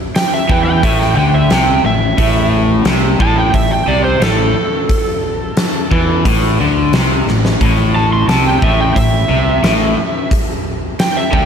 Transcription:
0.16 electric slide guitar G5, snare, open hi-hat
0.34 electric slide guitar E5
0.49 fingered electric bass E2, overdriven electric guitar E3, electric slide guitar G5, kick
0.65 electric slide guitar G5
0.83 fingered electric bass A1, overdriven electric guitar A2, electric slide guitar E5, kick, open hi-hat
0.99 electric slide guitar G5, snare
1.16 fingered electric bass D2, overdriven electric guitar D3, electric slide guitar G5
1.34 electric slide guitar E5
1.50 fingered electric bass C2, overdriven electric guitar C3, electric slide guitar G5, snare, open hi-hat
1.84 fingered electric bass A1, overdriven electric guitar A2, electric slide guitar E5
2.18 fingered electric bass A1, overdriven electric guitar A2, kick, open hi-hat
2.85 fingered electric bass C2, overdriven electric guitar C3, snare, open hi-hat
3.20 fingered electric bass A1, overdriven electric guitar A2, electric slide guitar A5, kick
3.38 electric slide guitar G5
3.54 fingered electric bass A1, overdriven electric guitar A2, electric slide guitar E5, kick, open hi-hat
3.71 electric slide guitar G5
3.87 fingered electric bass C2, overdriven electric guitar C3, electric slide guitar D5
4.04 electric slide guitar C5
4.21 fingered electric bass A1, overdriven electric guitar A2, electric slide guitar A4, snare, open hi-hat
4.89 kick, open hi-hat
5.57 snare, open hi-hat
5.91 fingered electric bass E2, overdriven electric guitar E3, kick
6.25 fingered electric bass A1, overdriven electric guitar A2, kick, open hi-hat
6.59 fingered electric bass D2, overdriven electric guitar D3
6.93 fingered electric bass C2, overdriven electric guitar C3, snare, open hi-hat
7.27 fingered electric bass A1, overdriven electric guitar A2, snare
7.45 snare
7.60 fingered electric bass A1, overdriven electric guitar A2, kick, open hi-hat
7.96 electric slide guitar A5
8.13 electric slide guitar C6
8.28 fingered electric bass C2, overdriven electric guitar C3, electric slide guitar A5, snare, open hi-hat
8.47 electric slide guitar G5
8.62 fingered electric bass A1, overdriven electric guitar A2, electric slide guitar E5, kick
8.80 electric slide guitar G5
8.95 fingered electric bass A1, overdriven electric guitar A2, electric slide guitar E5, kick, open hi-hat
9.29 fingered electric bass C2, overdriven electric guitar C3
9.63 fingered electric bass A1, overdriven electric guitar A2, snare, open hi-hat
10.31 kick, open hi-hat
10.99 electric slide guitar G5, snare, open hi-hat
11.17 electric slide guitar E5
11.32 fingered electric bass D2, overdriven electric guitar D3, electric slide guitar G5, kick

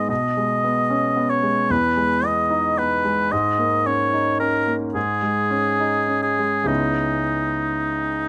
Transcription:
Already playing: grand piano G#2 G#3 B3 D#4
0.08 grand piano B2, oboe D#5
0.37 grand piano G#3
0.64 grand piano B3
0.90 grand piano C#4
1.17 grand piano B3
1.30 oboe C#5
1.43 grand piano G#3
1.70 grand piano E2, oboe B4
1.97 grand piano G#3
2.23 grand piano B3, oboe D#5
2.50 grand piano D#4
2.78 grand piano B3, oboe B4
3.04 grand piano G#3
3.32 grand piano G#2, oboe D#5
3.58 grand piano A#3
3.86 grand piano C#4, oboe C#5
4.13 grand piano D#4
4.40 grand piano C#4, oboe A#4
4.67 grand piano A#3
4.95 grand piano G#2, oboe G#4
5.22 grand piano G#3
5.51 grand piano C#4
5.80 grand piano D#4
6.08 grand piano C#4
6.22 oboe G#4
6.39 grand piano G#3
6.64 grand piano C#2 G#3 B3 C#4 E4, oboe D#4

